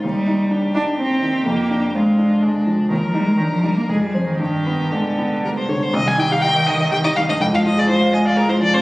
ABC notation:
X:1
M:3/4
L:1/16
Q:1/4=123
K:Cm
V:1 name="Violin"
E4 G8- | G4 F4 D4 | B8 A4 | G8 B c _d c |
e a g f g2 e2 g e f e | g f e d c2 e d B c d c |]
V:2 name="Grand piano"
E,,2 E2 D2 E2 C2 E,2 | F,,2 D2 C2 D2 A,2 F,2 | E,,2 E2 D2 E2 F,,2 [Cc]2 | G,,2 =B,2 A,2 B,2 G,2 D,2 |
C,, G, E G E e g e G E G, G,, | F,, F, F A F f a f A F F, C, |]
V:3 name="Cello" clef=bass
G,6 D2 C4 | B,4 A,6 z2 | E, F, G, A, E, F, G, B, A, G, F, E, | E,4 D,6 z2 |
E,12 | A,12 |]